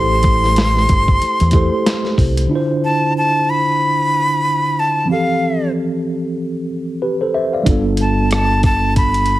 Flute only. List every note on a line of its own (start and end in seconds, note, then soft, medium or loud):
0.00 2.15 C6 loud
2.84 3.14 A5 medium
3.18 3.51 A5 medium
3.50 4.81 B5 loud
4.79 5.10 A5 medium
5.11 5.70 F5 medium
8.01 8.30 A5 medium
8.33 8.62 A5 medium
8.65 8.94 A5 medium
8.97 9.39 B5 medium